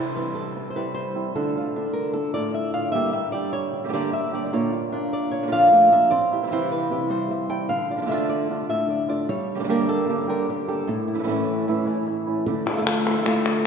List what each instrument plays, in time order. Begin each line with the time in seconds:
Already playing: nylon-string guitar C3 G3 C4 E4 C5
0.15 nylon-string guitar E3 G3 C4 E4 B4
0.35 nylon-string guitar A4
0.56 muted nylon-string guitar stroke
0.70 nylon-string guitar C5
0.75 nylon-string guitar G3 C4 E4 B4
0.94 nylon-string guitar C5
1.15 nylon-string guitar G3 C4 E4
1.35 nylon-string guitar D3 A3 D4 F4 A4
1.55 nylon-string guitar A3 D4 F4
1.75 nylon-string guitar D3 A3 D4 F4
1.93 nylon-string guitar A#4
2.13 nylon-string guitar A4, muted nylon-string guitar stroke
2.34 nylon-string guitar A2 A3 D4 F4 D5
2.54 nylon-string guitar E5
2.73 nylon-string guitar A3 D4 F4 F5
2.92 nylon-string guitar G2 D3 G3 A#3 D4 G4 E5
3.13 nylon-string guitar G3 A#3 D4 G4 E5
3.32 nylon-string guitar G3 A#3 D4 G4 D5
3.53 nylon-string guitar C#5
3.73 muted nylon-string guitar stroke
3.84 nylon-string guitar D3 G3 A#3 D4 G4
3.88 nylon-string guitar D3 G3 A#3 D4 G4
3.93 nylon-string guitar G2 D3 G3 A#3 D4 G4 D5
4.13 nylon-string guitar G3 A#3 D4 G4 E5
4.33 nylon-string guitar G3 A#3 D4 G4 D5
4.46 nylon-string guitar D5
4.52 nylon-string guitar A#2 D3 A#3 D4 F4 C#5
4.72 nylon-string guitar A#3 D4 F4
4.92 nylon-string guitar A#3 D4 F4
5.13 nylon-string guitar D5
5.31 nylon-string guitar C#5, muted nylon-string guitar stroke
5.43 nylon-string guitar D3 A#3 D4 F4
5.47 nylon-string guitar D3 A#3 D4 F4
5.52 nylon-string guitar A#2 D3 F3 A#3 D4 F4 F5
5.71 nylon-string guitar D3 A3 A#3 D4
5.92 nylon-string guitar A#3 D4 F4 E5
6.11 nylon-string guitar C4 D5, muted nylon-string guitar stroke
6.32 nylon-string guitar G3 C4 E4 G4
6.42 nylon-string guitar E3 G3 C4 E4
6.47 nylon-string guitar E3 G3 C4 E4
6.51 nylon-string guitar C3 E3 G3 C4 E4 C5
6.72 nylon-string guitar B4
6.90 nylon-string guitar C3 E3 G3 C4 E4 G4
7.10 nylon-string guitar G3 C5
7.30 nylon-string guitar E5, muted nylon-string guitar stroke
7.50 nylon-string guitar G3 C4 E4 G5
7.69 nylon-string guitar D3 F5, muted nylon-string guitar stroke
7.89 nylon-string guitar A3 D4 F4 D5
7.97 nylon-string guitar D3 A3 D4 F4
8.01 nylon-string guitar D3 A3 D4 F4
8.06 nylon-string guitar D3 A3 D4 F4 E5
8.11 nylon-string guitar D3 A3 D4 F4
8.29 nylon-string guitar D5
8.50 nylon-string guitar D3 A3 D4 F4
8.69 nylon-string guitar A2 E5
8.88 nylon-string guitar D5, muted nylon-string guitar stroke
9.08 nylon-string guitar A3 D4 F4 D5
9.29 nylon-string guitar G3 C#5, muted nylon-string guitar stroke
9.55 nylon-string guitar D3 G3 A#3 D4 G4
9.59 nylon-string guitar D3 G3 A#3 D4 G4
9.64 nylon-string guitar D3 G3 A#3 D4 G4
9.68 nylon-string guitar G2 D3 G3 A#3 D4 G4 A#4
9.89 nylon-string guitar A4
10.08 nylon-string guitar G2 D3 G3 A#3 D4 G4
10.28 nylon-string guitar D3 G3 A#3 D4 G4 A#4
10.48 nylon-string guitar G4, muted nylon-string guitar stroke
10.68 nylon-string guitar G3 A#3 D4 G4 A4
10.87 nylon-string guitar A2 E4, muted nylon-string guitar stroke
11.08 nylon-string guitar E4
11.14 nylon-string guitar E3 A3 C#4 E4
11.19 nylon-string guitar E3 A3 C#4 E4
11.23 nylon-string guitar E3 A3 C#4 E4
11.28 nylon-string guitar A2 E3 A3 C#4 E4
11.47 nylon-string guitar E4
11.67 nylon-string guitar A2 E3 A3 C#4 E4
11.86 nylon-string guitar E3 A3 C#4 E4
12.07 nylon-string guitar E4, muted nylon-string guitar stroke
12.27 nylon-string guitar A3 C#4 E4
12.46 nylon-string guitar D3 F3 A3 D4 E4, muted nylon-string guitar stroke
12.66 nylon-string guitar A3 D4 E4 F4 A4
12.72 nylon-string guitar A3 E4 F4 A4
12.77 nylon-string guitar A3 E4 F4 A4
12.81 nylon-string guitar A3 E4 F4 A4
12.86 nylon-string guitar D3 A3 E4 F4 A4, clap
13.07 clap
13.17 nylon-string guitar A3 E4 F4 A4
13.22 nylon-string guitar A3 E4 F4 A4
13.26 nylon-string guitar D3 A3 E4 F4 A4, muted nylon-string guitar stroke, clap
13.46 clap